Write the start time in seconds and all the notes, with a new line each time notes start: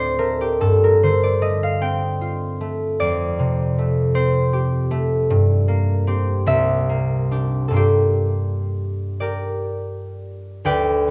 Already playing: D2 A2 A3 C4 D4 F4 C5 D5 F5
0.19 A3 A#4
0.41 G4
0.61 G2 A4
0.84 A#4
1.03 D3 C5
1.23 D5
1.41 A3 D#5
1.63 F5
1.81 C4 G5
2.21 F4
2.61 A3
3.00 F2 D5
3.39 C3
3.78 A3
4.15 C4 C5
4.53 G4
4.91 A3
5.30 G2
5.68 A#3
6.07 C4 G4
6.46 C2 E5
6.89 A#3
7.31 D4 G4
7.68 G2 A#3 A4
7.73 D4 F4 G4
9.20 G4 A#4 D5
10.65 D2 B4 D5 G5